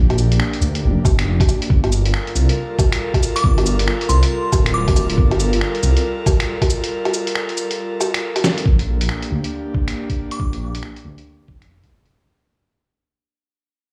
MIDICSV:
0, 0, Header, 1, 5, 480
1, 0, Start_track
1, 0, Tempo, 434783
1, 1876, Time_signature, 4, 2, 24, 8
1, 15368, End_track
2, 0, Start_track
2, 0, Title_t, "Synth bell"
2, 0, Program_c, 0, 98
2, 3707, Note_on_c, 0, 86, 97
2, 3916, Note_off_c, 0, 86, 0
2, 4515, Note_on_c, 0, 84, 88
2, 4905, Note_off_c, 0, 84, 0
2, 5233, Note_on_c, 0, 86, 98
2, 5624, Note_off_c, 0, 86, 0
2, 11389, Note_on_c, 0, 86, 89
2, 11478, Note_off_c, 0, 86, 0
2, 15368, End_track
3, 0, Start_track
3, 0, Title_t, "Analog synth pad"
3, 0, Program_c, 1, 89
3, 0, Note_on_c, 1, 58, 84
3, 0, Note_on_c, 1, 62, 75
3, 0, Note_on_c, 1, 67, 89
3, 1830, Note_off_c, 1, 58, 0
3, 1831, Note_off_c, 1, 67, 0
3, 1832, Note_off_c, 1, 62, 0
3, 1880, Note_on_c, 1, 65, 74
3, 1881, Note_on_c, 1, 55, 83
3, 1881, Note_on_c, 1, 69, 81
3, 1881, Note_on_c, 1, 70, 96
3, 9514, Note_off_c, 1, 55, 0
3, 9514, Note_off_c, 1, 65, 0
3, 9514, Note_off_c, 1, 69, 0
3, 9514, Note_off_c, 1, 70, 0
3, 9562, Note_on_c, 1, 58, 81
3, 9564, Note_on_c, 1, 67, 93
3, 9565, Note_on_c, 1, 62, 76
3, 13360, Note_off_c, 1, 58, 0
3, 13362, Note_off_c, 1, 62, 0
3, 13362, Note_off_c, 1, 67, 0
3, 15368, End_track
4, 0, Start_track
4, 0, Title_t, "Detuned saw bass"
4, 0, Program_c, 2, 39
4, 0, Note_on_c, 2, 34, 96
4, 326, Note_off_c, 2, 34, 0
4, 346, Note_on_c, 2, 34, 94
4, 429, Note_off_c, 2, 34, 0
4, 674, Note_on_c, 2, 38, 107
4, 917, Note_on_c, 2, 29, 105
4, 934, Note_off_c, 2, 38, 0
4, 1054, Note_off_c, 2, 29, 0
4, 1156, Note_on_c, 2, 31, 80
4, 1381, Note_off_c, 2, 31, 0
4, 1397, Note_on_c, 2, 29, 94
4, 1534, Note_off_c, 2, 29, 0
4, 1876, Note_on_c, 2, 31, 97
4, 2246, Note_off_c, 2, 31, 0
4, 2265, Note_on_c, 2, 31, 97
4, 2349, Note_off_c, 2, 31, 0
4, 2597, Note_on_c, 2, 36, 107
4, 2733, Note_off_c, 2, 36, 0
4, 3797, Note_on_c, 2, 31, 100
4, 4167, Note_off_c, 2, 31, 0
4, 4184, Note_on_c, 2, 31, 93
4, 4268, Note_off_c, 2, 31, 0
4, 4515, Note_on_c, 2, 36, 112
4, 4653, Note_off_c, 2, 36, 0
4, 4997, Note_on_c, 2, 26, 89
4, 5705, Note_off_c, 2, 26, 0
4, 5714, Note_on_c, 2, 31, 100
4, 6085, Note_off_c, 2, 31, 0
4, 6106, Note_on_c, 2, 31, 94
4, 6189, Note_off_c, 2, 31, 0
4, 6438, Note_on_c, 2, 36, 104
4, 6574, Note_off_c, 2, 36, 0
4, 9558, Note_on_c, 2, 34, 92
4, 9927, Note_off_c, 2, 34, 0
4, 9948, Note_on_c, 2, 34, 96
4, 10030, Note_off_c, 2, 34, 0
4, 10279, Note_on_c, 2, 38, 105
4, 10415, Note_off_c, 2, 38, 0
4, 11477, Note_on_c, 2, 34, 91
4, 11846, Note_off_c, 2, 34, 0
4, 11868, Note_on_c, 2, 34, 91
4, 11950, Note_off_c, 2, 34, 0
4, 12197, Note_on_c, 2, 38, 101
4, 12334, Note_off_c, 2, 38, 0
4, 12678, Note_on_c, 2, 29, 86
4, 13385, Note_off_c, 2, 29, 0
4, 15368, End_track
5, 0, Start_track
5, 0, Title_t, "Drums"
5, 111, Note_on_c, 9, 42, 31
5, 111, Note_on_c, 9, 77, 54
5, 200, Note_on_c, 9, 69, 72
5, 221, Note_off_c, 9, 42, 0
5, 221, Note_off_c, 9, 77, 0
5, 310, Note_off_c, 9, 69, 0
5, 350, Note_on_c, 9, 42, 54
5, 438, Note_on_c, 9, 26, 107
5, 461, Note_off_c, 9, 42, 0
5, 548, Note_off_c, 9, 26, 0
5, 590, Note_on_c, 9, 42, 32
5, 681, Note_on_c, 9, 69, 67
5, 700, Note_off_c, 9, 42, 0
5, 792, Note_off_c, 9, 69, 0
5, 829, Note_on_c, 9, 42, 52
5, 940, Note_off_c, 9, 42, 0
5, 1157, Note_on_c, 9, 36, 113
5, 1161, Note_on_c, 9, 69, 69
5, 1161, Note_on_c, 9, 77, 64
5, 1267, Note_off_c, 9, 36, 0
5, 1272, Note_off_c, 9, 69, 0
5, 1272, Note_off_c, 9, 77, 0
5, 1311, Note_on_c, 9, 26, 105
5, 1311, Note_on_c, 9, 42, 56
5, 1422, Note_off_c, 9, 26, 0
5, 1422, Note_off_c, 9, 42, 0
5, 1546, Note_on_c, 9, 36, 110
5, 1551, Note_on_c, 9, 42, 45
5, 1551, Note_on_c, 9, 77, 51
5, 1640, Note_off_c, 9, 77, 0
5, 1640, Note_on_c, 9, 69, 71
5, 1640, Note_on_c, 9, 77, 35
5, 1656, Note_off_c, 9, 36, 0
5, 1662, Note_off_c, 9, 42, 0
5, 1751, Note_off_c, 9, 69, 0
5, 1751, Note_off_c, 9, 77, 0
5, 1788, Note_on_c, 9, 42, 58
5, 1877, Note_on_c, 9, 36, 113
5, 1898, Note_off_c, 9, 42, 0
5, 1987, Note_off_c, 9, 36, 0
5, 2029, Note_on_c, 9, 42, 32
5, 2029, Note_on_c, 9, 77, 52
5, 2119, Note_on_c, 9, 69, 71
5, 2139, Note_off_c, 9, 42, 0
5, 2139, Note_off_c, 9, 77, 0
5, 2229, Note_off_c, 9, 69, 0
5, 2269, Note_on_c, 9, 42, 53
5, 2360, Note_on_c, 9, 26, 111
5, 2379, Note_off_c, 9, 42, 0
5, 2470, Note_off_c, 9, 26, 0
5, 2510, Note_on_c, 9, 42, 31
5, 2601, Note_on_c, 9, 69, 74
5, 2620, Note_off_c, 9, 42, 0
5, 2712, Note_off_c, 9, 69, 0
5, 2752, Note_on_c, 9, 42, 53
5, 2862, Note_off_c, 9, 42, 0
5, 3076, Note_on_c, 9, 36, 111
5, 3080, Note_on_c, 9, 69, 75
5, 3080, Note_on_c, 9, 77, 63
5, 3186, Note_off_c, 9, 36, 0
5, 3190, Note_off_c, 9, 69, 0
5, 3190, Note_off_c, 9, 77, 0
5, 3228, Note_on_c, 9, 26, 104
5, 3228, Note_on_c, 9, 42, 53
5, 3339, Note_off_c, 9, 26, 0
5, 3339, Note_off_c, 9, 42, 0
5, 3465, Note_on_c, 9, 36, 63
5, 3470, Note_on_c, 9, 42, 45
5, 3470, Note_on_c, 9, 77, 51
5, 3562, Note_on_c, 9, 69, 72
5, 3576, Note_off_c, 9, 36, 0
5, 3581, Note_off_c, 9, 42, 0
5, 3581, Note_off_c, 9, 77, 0
5, 3672, Note_off_c, 9, 69, 0
5, 3713, Note_on_c, 9, 42, 56
5, 3796, Note_on_c, 9, 36, 114
5, 3823, Note_off_c, 9, 42, 0
5, 3907, Note_off_c, 9, 36, 0
5, 3951, Note_on_c, 9, 42, 32
5, 3951, Note_on_c, 9, 77, 55
5, 4041, Note_on_c, 9, 69, 80
5, 4061, Note_off_c, 9, 42, 0
5, 4061, Note_off_c, 9, 77, 0
5, 4151, Note_off_c, 9, 69, 0
5, 4188, Note_on_c, 9, 42, 53
5, 4280, Note_on_c, 9, 26, 110
5, 4298, Note_off_c, 9, 42, 0
5, 4390, Note_off_c, 9, 26, 0
5, 4429, Note_on_c, 9, 42, 30
5, 4519, Note_on_c, 9, 69, 77
5, 4539, Note_off_c, 9, 42, 0
5, 4629, Note_off_c, 9, 69, 0
5, 4667, Note_on_c, 9, 42, 53
5, 4778, Note_off_c, 9, 42, 0
5, 4996, Note_on_c, 9, 36, 109
5, 4996, Note_on_c, 9, 69, 78
5, 4996, Note_on_c, 9, 77, 66
5, 5106, Note_off_c, 9, 36, 0
5, 5106, Note_off_c, 9, 69, 0
5, 5106, Note_off_c, 9, 77, 0
5, 5146, Note_on_c, 9, 26, 100
5, 5146, Note_on_c, 9, 42, 51
5, 5257, Note_off_c, 9, 26, 0
5, 5257, Note_off_c, 9, 42, 0
5, 5385, Note_on_c, 9, 36, 108
5, 5385, Note_on_c, 9, 42, 43
5, 5385, Note_on_c, 9, 77, 53
5, 5477, Note_off_c, 9, 77, 0
5, 5477, Note_on_c, 9, 69, 80
5, 5477, Note_on_c, 9, 77, 37
5, 5495, Note_off_c, 9, 36, 0
5, 5496, Note_off_c, 9, 42, 0
5, 5587, Note_off_c, 9, 69, 0
5, 5587, Note_off_c, 9, 77, 0
5, 5626, Note_on_c, 9, 42, 56
5, 5715, Note_on_c, 9, 36, 113
5, 5737, Note_off_c, 9, 42, 0
5, 5825, Note_off_c, 9, 36, 0
5, 5866, Note_on_c, 9, 42, 34
5, 5866, Note_on_c, 9, 77, 56
5, 5957, Note_on_c, 9, 69, 74
5, 5977, Note_off_c, 9, 42, 0
5, 5977, Note_off_c, 9, 77, 0
5, 6067, Note_off_c, 9, 69, 0
5, 6106, Note_on_c, 9, 42, 55
5, 6197, Note_on_c, 9, 26, 100
5, 6216, Note_off_c, 9, 42, 0
5, 6307, Note_off_c, 9, 26, 0
5, 6346, Note_on_c, 9, 42, 33
5, 6436, Note_on_c, 9, 69, 78
5, 6456, Note_off_c, 9, 42, 0
5, 6546, Note_off_c, 9, 69, 0
5, 6587, Note_on_c, 9, 42, 55
5, 6697, Note_off_c, 9, 42, 0
5, 6914, Note_on_c, 9, 36, 105
5, 6917, Note_on_c, 9, 69, 80
5, 6917, Note_on_c, 9, 77, 73
5, 7024, Note_off_c, 9, 36, 0
5, 7027, Note_off_c, 9, 69, 0
5, 7027, Note_off_c, 9, 77, 0
5, 7066, Note_on_c, 9, 26, 103
5, 7066, Note_on_c, 9, 42, 54
5, 7177, Note_off_c, 9, 26, 0
5, 7177, Note_off_c, 9, 42, 0
5, 7303, Note_on_c, 9, 36, 60
5, 7306, Note_on_c, 9, 42, 45
5, 7306, Note_on_c, 9, 77, 56
5, 7396, Note_on_c, 9, 69, 81
5, 7413, Note_off_c, 9, 36, 0
5, 7416, Note_off_c, 9, 42, 0
5, 7416, Note_off_c, 9, 77, 0
5, 7506, Note_off_c, 9, 69, 0
5, 7548, Note_on_c, 9, 42, 59
5, 7658, Note_off_c, 9, 42, 0
5, 7787, Note_on_c, 9, 42, 35
5, 7787, Note_on_c, 9, 77, 60
5, 7879, Note_on_c, 9, 69, 75
5, 7898, Note_off_c, 9, 42, 0
5, 7898, Note_off_c, 9, 77, 0
5, 7989, Note_off_c, 9, 69, 0
5, 8028, Note_on_c, 9, 42, 59
5, 8119, Note_on_c, 9, 26, 103
5, 8138, Note_off_c, 9, 42, 0
5, 8230, Note_off_c, 9, 26, 0
5, 8270, Note_on_c, 9, 42, 33
5, 8360, Note_on_c, 9, 69, 77
5, 8380, Note_off_c, 9, 42, 0
5, 8470, Note_off_c, 9, 69, 0
5, 8509, Note_on_c, 9, 42, 54
5, 8619, Note_off_c, 9, 42, 0
5, 8839, Note_on_c, 9, 69, 81
5, 8839, Note_on_c, 9, 77, 68
5, 8949, Note_off_c, 9, 69, 0
5, 8949, Note_off_c, 9, 77, 0
5, 8990, Note_on_c, 9, 26, 105
5, 8990, Note_on_c, 9, 42, 60
5, 9101, Note_off_c, 9, 26, 0
5, 9101, Note_off_c, 9, 42, 0
5, 9227, Note_on_c, 9, 42, 48
5, 9227, Note_on_c, 9, 77, 55
5, 9319, Note_off_c, 9, 77, 0
5, 9319, Note_on_c, 9, 38, 98
5, 9319, Note_on_c, 9, 69, 80
5, 9319, Note_on_c, 9, 77, 39
5, 9338, Note_off_c, 9, 42, 0
5, 9429, Note_off_c, 9, 38, 0
5, 9429, Note_off_c, 9, 69, 0
5, 9429, Note_off_c, 9, 77, 0
5, 9469, Note_on_c, 9, 42, 60
5, 9557, Note_on_c, 9, 36, 116
5, 9579, Note_off_c, 9, 42, 0
5, 9667, Note_off_c, 9, 36, 0
5, 9707, Note_on_c, 9, 42, 32
5, 9817, Note_off_c, 9, 42, 0
5, 9947, Note_on_c, 9, 42, 57
5, 10036, Note_on_c, 9, 26, 105
5, 10058, Note_off_c, 9, 42, 0
5, 10146, Note_off_c, 9, 26, 0
5, 10185, Note_on_c, 9, 42, 32
5, 10295, Note_off_c, 9, 42, 0
5, 10425, Note_on_c, 9, 42, 56
5, 10535, Note_off_c, 9, 42, 0
5, 10757, Note_on_c, 9, 36, 107
5, 10868, Note_off_c, 9, 36, 0
5, 10905, Note_on_c, 9, 26, 98
5, 10905, Note_on_c, 9, 42, 56
5, 11015, Note_off_c, 9, 26, 0
5, 11015, Note_off_c, 9, 42, 0
5, 11146, Note_on_c, 9, 36, 57
5, 11147, Note_on_c, 9, 42, 44
5, 11256, Note_off_c, 9, 36, 0
5, 11258, Note_off_c, 9, 42, 0
5, 11386, Note_on_c, 9, 42, 59
5, 11477, Note_on_c, 9, 36, 113
5, 11496, Note_off_c, 9, 42, 0
5, 11587, Note_off_c, 9, 36, 0
5, 11626, Note_on_c, 9, 42, 32
5, 11736, Note_off_c, 9, 42, 0
5, 11865, Note_on_c, 9, 42, 54
5, 11954, Note_on_c, 9, 26, 104
5, 11976, Note_off_c, 9, 42, 0
5, 12064, Note_off_c, 9, 26, 0
5, 12104, Note_on_c, 9, 42, 31
5, 12215, Note_off_c, 9, 42, 0
5, 12343, Note_on_c, 9, 42, 52
5, 12454, Note_off_c, 9, 42, 0
5, 12677, Note_on_c, 9, 36, 105
5, 12787, Note_off_c, 9, 36, 0
5, 12827, Note_on_c, 9, 26, 99
5, 12827, Note_on_c, 9, 42, 51
5, 12938, Note_off_c, 9, 26, 0
5, 12938, Note_off_c, 9, 42, 0
5, 13067, Note_on_c, 9, 36, 101
5, 13067, Note_on_c, 9, 42, 42
5, 13177, Note_off_c, 9, 36, 0
5, 13177, Note_off_c, 9, 42, 0
5, 13309, Note_on_c, 9, 42, 57
5, 13420, Note_off_c, 9, 42, 0
5, 15368, End_track
0, 0, End_of_file